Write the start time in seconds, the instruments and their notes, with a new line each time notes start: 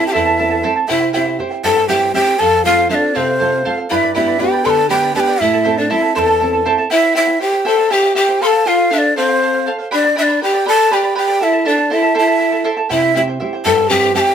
Already playing: nylon-string guitar C4 E4 A4
0.01 charango E4 A4 A5
0.07 pan flute G4, quena G5
0.12 nylon-string guitar E2, charango E4 A4 C5 E5 A5, pan flute E4, quena E5
0.25 charango E4 A4 A5
0.38 nylon-string guitar C4 E4 A4, charango E4 A4 E5 A5
0.50 charango E4 A4 A5
0.63 nylon-string guitar C4 E4 A4, charango E4 A4 C5 E5 A5
0.76 charango E4 A4 A5
0.88 nylon-string guitar C3, charango E4 G4 C5 E5 G5, pan flute E4, quena E5
1.00 charango E4 C5 G5
1.13 nylon-string guitar C4 E4 G4, charango E4 G4 C5 E5 G5, pan flute E4, quena E5
1.25 charango E4 C5 G5
1.39 nylon-string guitar C4 E4 G4, charango E4 C5 E5 G5
1.51 charango E4 C5 G5
1.64 nylon-string guitar G2, charango E4 G4 C5 E5 G5, pan flute A4, quena A5
1.76 charango E4 C5 G5
1.88 nylon-string guitar C4 E4 G4, charango E4 G4 C5 E5 G5, pan flute G4, quena G5
2.02 charango E4 C5 G5
2.14 nylon-string guitar C4 E4 G4, charango E4 G4 C5 E5 G5, pan flute G4, quena G5
2.28 charango E4 C5
2.39 nylon-string guitar F2, pan flute A4, charango A4 C5 F5, quena A5
2.53 charango C5 F5
2.65 nylon-string guitar C4 F4 A4, pan flute F4, charango A4 C5 F5, quena F5
2.78 charango C5 F5
2.89 nylon-string guitar C4 F4 A4, pan flute D4, charango A4 C5 F5, quena E5
2.95 quena D5
3.01 charango C5 F5
3.15 nylon-string guitar C3, pan flute C4, charango A4 C5 F5, quena C5
3.27 charango C5 F5
3.39 nylon-string guitar C4 F4 A4, charango A4 C5 F5
3.52 charango C5 F5
3.65 nylon-string guitar C4 F4 A4, charango A4 C5 F5
3.77 charango C5 F5
3.90 nylon-string guitar G2, pan flute E4, charango G4 B4 D5 G5 B5, quena F5
3.94 quena E5
4.03 charango B4 D5 B5
4.14 nylon-string guitar B3 D4 G4, pan flute E4, charango G4 B4 D5 G5 B5, quena E5
4.27 charango B4 D5 B5
4.39 nylon-string guitar B3 D4 G4, pan flute G4, charango B4 D5 G5 B5, quena G5
4.52 charango B4 D5 B5
4.64 nylon-string guitar D3, charango G4 B4 D5 G5 B5, pan flute A4, quena C6
4.69 quena A5
4.77 charango B4 D5 B5
4.89 nylon-string guitar B3 D4 G4, charango G4 B4 D5 G5 B5, pan flute G4, quena G5
5.02 charango B4 D5 B5
5.14 nylon-string guitar B3 D4 G4, pan flute G4, charango G4 B4 D5 G5 B5, quena A5
5.20 quena G5
5.27 charango B4 D5 B5
5.40 nylon-string guitar A2, pan flute E4, charango E4 A4 E5 A5, quena E5
5.53 charango E4 A4 A5
5.64 nylon-string guitar C4 E4 A4, charango E4 A4 C5 E5 A5
5.77 pan flute D4, charango E4 A4 A5, quena D5
5.90 nylon-string guitar C4 E4 A4, charango E4 A4 C5 E5 A5, pan flute E4, quena E5
6.02 charango E4 A4 A5
6.15 nylon-string guitar E2, charango E4 A4 C5 E5 A5, pan flute A4, quena A5 C6
6.27 charango E4 A4 A5
6.40 nylon-string guitar C4 E4 A4, charango E4 A4 E5 A5
6.53 charango E4 A4 A5
6.65 nylon-string guitar C4 E4 A4, charango E4 A4 C5 E5 A5
6.78 charango E4 A4 A5
6.90 charango E4 G4 C5 E5 G5, pan flute E4, quena E5
7.03 charango C5 G5
7.14 charango E4 G4 C5 E5 G5, pan flute E4, quena E5
7.27 charango E4 C5 G5
7.39 charango E4 C5 E5 G5, pan flute G4, quena G5
7.52 charango E4 C5 G5
7.65 charango E4 G4 C5 E5 G5, pan flute A4, quena A5
7.77 charango E4 C5 G5
7.90 charango E4 G4 C5 E5 G5, pan flute G4, quena G5
8.03 charango E4 G5
8.15 charango E4 G4 C5 E5 G5, pan flute G4, quena G5
8.27 charango E4 C5 G5
8.40 charango A4 C5 F5, pan flute A4, quena C6
8.46 quena A5
8.52 charango C5 F5
8.65 pan flute F4, charango A4 C5 F5, quena F5
8.77 charango C5 F5
8.90 pan flute D4, charango A4 C5 F5, quena E5
8.98 quena D5
9.05 charango C5
9.16 pan flute C4, charango A4 C5 F5, quena C5
9.29 charango C5 F5
9.41 charango A4 C5 F5
9.54 charango C5 F5
9.66 charango A4 C5 F5
9.79 charango C5 F5
9.91 pan flute D4, charango G4 B4 D5 G5 B5, quena D5
10.04 charango B4 D5 B5
10.16 pan flute D4, charango G4 B4 D5 G5 B5, quena E5
10.23 quena D5
10.28 charango B4 D5 B5
10.41 pan flute G4, charango B4 D5 G5 B5, quena G5
10.53 charango B4 D5 B5
10.66 charango G4 B4 D5 G5 B5, pan flute A4, quena A5
10.79 charango B4 D5 B5
10.91 charango G4 B4 D5 G5 B5, pan flute G4, quena G5
11.03 charango B4 D5 B5
11.15 charango G4 B4 D5 G5 B5, pan flute G4, quena G5
11.28 charango B4 D5 B5
11.40 charango E4 A4 E5 A5, pan flute E4, quena E5
11.53 charango E4 A4 A5
11.65 pan flute D4, charango E4 A4 C5 E5 A5, quena D5
11.78 charango E4 A4 A5
11.90 charango E4 A4 C5 E5 A5, pan flute E4, quena E5
12.02 charango E4 A4 A5
12.15 charango E4 A4 C5 E5 A5
12.19 pan flute E4, quena E5
12.27 charango E4 A4 A5
12.39 charango E4 A4 E5 A5
12.52 charango E4 A4 A5
12.64 charango E4 A4 C5 E5 A5
12.77 charango E4 A4 A5
12.89 nylon-string guitar C3, charango E4 G4 C5 E5 G5, pan flute E4, quena E5
13.02 charango E4 G5
13.14 nylon-string guitar C4 E4 G4, charango E4 G4 C5 E5 G5, pan flute E4, quena E5
13.28 charango E4 C5 G5
13.40 nylon-string guitar C4 E4 G4, charango E4 C5 E5 G5
13.53 charango E4 C5 G5
13.65 nylon-string guitar G2, charango E4 G4 C5 E5 G5, pan flute A4, quena A5
13.77 charango E4 C5 G5
13.89 nylon-string guitar C4 E4 G4, charango E4 G4 C5 E5 G5, pan flute G4, quena G5
14.02 charango E4 C5 G5
14.15 nylon-string guitar C4 E4 G4, charango E4 G4 C5 E5 G5, pan flute G4, quena A5
14.20 quena G5
14.28 charango E4 C5 G5